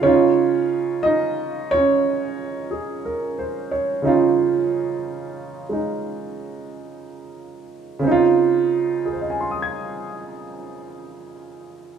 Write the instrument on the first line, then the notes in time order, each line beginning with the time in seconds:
upright piano
0.02 C#3 C#4 D#4 C#5
0.06 F4
1.03 D#4 D#5
1.71 C#4 C#5
2.71 G#4
3.05 A#4
3.39 C5
3.71 C#5
4.02 C#3 C#4 D#4
4.07 F4
5.69 G#3 D#4
7.99 C#3 C4
8.07 D#4
8.11 F4
9.05 G#4
9.13 C5
9.21 D#5
9.30 G#5
9.41 C6
9.51 D#6
9.62 G#6